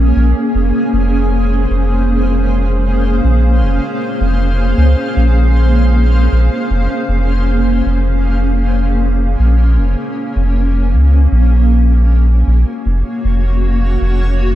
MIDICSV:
0, 0, Header, 1, 3, 480
1, 0, Start_track
1, 0, Key_signature, -5, "minor"
1, 0, Tempo, 769231
1, 1302, Time_signature, 4, 2, 24, 8
1, 9079, End_track
2, 0, Start_track
2, 0, Title_t, "Ambient pad"
2, 0, Program_c, 0, 92
2, 0, Note_on_c, 0, 58, 80
2, 0, Note_on_c, 0, 61, 85
2, 0, Note_on_c, 0, 68, 74
2, 0, Note_on_c, 0, 72, 85
2, 395, Note_on_c, 0, 77, 90
2, 7053, Note_off_c, 0, 58, 0
2, 7060, Note_off_c, 0, 61, 0
2, 7060, Note_off_c, 0, 77, 0
2, 7061, Note_on_c, 0, 58, 75
2, 7063, Note_off_c, 0, 72, 0
2, 7239, Note_on_c, 0, 66, 79
2, 7289, Note_on_c, 0, 61, 87
2, 7324, Note_on_c, 0, 73, 88
2, 8221, Note_on_c, 0, 78, 93
2, 8436, Note_off_c, 0, 68, 0
2, 9079, Note_off_c, 0, 58, 0
2, 9079, Note_off_c, 0, 61, 0
2, 9079, Note_off_c, 0, 66, 0
2, 9079, Note_off_c, 0, 73, 0
2, 9079, Note_off_c, 0, 78, 0
2, 9079, End_track
3, 0, Start_track
3, 0, Title_t, "Sub bass"
3, 0, Program_c, 1, 38
3, 0, Note_on_c, 1, 34, 92
3, 80, Note_off_c, 1, 34, 0
3, 101, Note_on_c, 1, 34, 82
3, 210, Note_off_c, 1, 34, 0
3, 341, Note_on_c, 1, 29, 90
3, 450, Note_off_c, 1, 29, 0
3, 581, Note_on_c, 1, 29, 97
3, 1039, Note_off_c, 1, 29, 0
3, 1063, Note_on_c, 1, 29, 81
3, 2000, Note_off_c, 1, 29, 0
3, 2022, Note_on_c, 1, 34, 80
3, 2259, Note_on_c, 1, 29, 74
3, 2269, Note_off_c, 1, 34, 0
3, 2369, Note_off_c, 1, 29, 0
3, 2624, Note_on_c, 1, 29, 94
3, 2959, Note_off_c, 1, 29, 0
3, 2980, Note_on_c, 1, 37, 101
3, 3090, Note_off_c, 1, 37, 0
3, 3223, Note_on_c, 1, 34, 97
3, 3920, Note_off_c, 1, 34, 0
3, 3944, Note_on_c, 1, 34, 80
3, 4052, Note_off_c, 1, 34, 0
3, 4182, Note_on_c, 1, 29, 92
3, 4291, Note_off_c, 1, 29, 0
3, 4421, Note_on_c, 1, 29, 98
3, 4880, Note_off_c, 1, 29, 0
3, 4903, Note_on_c, 1, 29, 84
3, 5841, Note_off_c, 1, 29, 0
3, 5861, Note_on_c, 1, 34, 83
3, 6101, Note_on_c, 1, 29, 74
3, 6110, Note_off_c, 1, 34, 0
3, 6210, Note_off_c, 1, 29, 0
3, 6465, Note_on_c, 1, 29, 100
3, 6822, Note_on_c, 1, 37, 83
3, 6831, Note_off_c, 1, 29, 0
3, 7034, Note_off_c, 1, 37, 0
3, 7062, Note_on_c, 1, 34, 95
3, 7760, Note_off_c, 1, 34, 0
3, 7782, Note_on_c, 1, 34, 82
3, 7891, Note_off_c, 1, 34, 0
3, 8023, Note_on_c, 1, 29, 92
3, 8131, Note_off_c, 1, 29, 0
3, 8264, Note_on_c, 1, 29, 101
3, 8721, Note_off_c, 1, 29, 0
3, 8744, Note_on_c, 1, 29, 83
3, 9079, Note_off_c, 1, 29, 0
3, 9079, End_track
0, 0, End_of_file